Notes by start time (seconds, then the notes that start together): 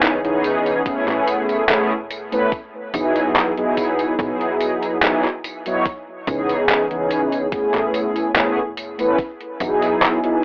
Already playing: C#2 E3 B3 C#4 D#4 G#4
0.02 clap, closed hi-hat, tambourine
0.23 E3 B3 C#4 D#4 G#4, closed hi-hat
0.44 closed hi-hat, tambourine
0.66 closed hi-hat, tambourine
0.85 A1 A3 B3 C#4 E4 G#4, kick, closed hi-hat, tambourine
1.07 A1, clap, closed hi-hat
1.27 closed hi-hat, tambourine
1.49 E1, closed hi-hat, tambourine
1.68 E1 A3 B3 C#4 E4 G#4, clap, closed hi-hat, tambourine
2.11 closed hi-hat, tambourine
2.32 A3 B3 C#4 E4 B4, closed hi-hat, tambourine
2.52 kick, closed hi-hat, tambourine
2.93 E1 F#3 B3 D#4 E4 G#4, closed hi-hat, tambourine
3.16 closed hi-hat, tambourine
3.36 clap, closed hi-hat, tambourine
3.57 F#3 B3 D#4 E4 G#4, closed hi-hat
3.77 kick, closed hi-hat, tambourine
3.99 closed hi-hat, tambourine
4.19 B1 F#3 B3 D#4 E4 G#4, kick, closed hi-hat, tambourine
4.41 closed hi-hat
4.61 closed hi-hat, tambourine
4.83 closed hi-hat, tambourine
5.02 F#3 B3 D#4 E4 G#4, clap, closed hi-hat, tambourine
5.24 clap
5.44 closed hi-hat, tambourine
5.66 F#3 B3 D#4 E4 C#5, closed hi-hat, tambourine
5.85 kick, closed hi-hat, tambourine
6.27 C#2 E3 B3 C#4 D#4 G#4, kick, closed hi-hat, tambourine
6.49 closed hi-hat, tambourine
6.69 clap, closed hi-hat, tambourine
6.90 E3 B3 C#4 D#4 G#4, closed hi-hat
7.11 closed hi-hat, tambourine
7.32 closed hi-hat, tambourine
7.52 A1 A3 B3 C#4 E4 G#4, kick, closed hi-hat, tambourine
7.74 A1, clap, closed hi-hat
7.94 closed hi-hat, tambourine
8.16 E1, closed hi-hat, tambourine
8.35 E1 A3 B3 C#4 E4 G#4, clap, closed hi-hat, tambourine
8.77 closed hi-hat, tambourine
8.98 A3 B3 C#4 E4 B4, closed hi-hat, tambourine
9.19 kick, closed hi-hat, tambourine
9.41 closed hi-hat
9.60 E1 F#3 B3 D#4 E4 G#4, closed hi-hat, tambourine
9.82 closed hi-hat, tambourine
10.02 clap, closed hi-hat, tambourine
10.23 F#3 B3 D#4 E4 G#4, closed hi-hat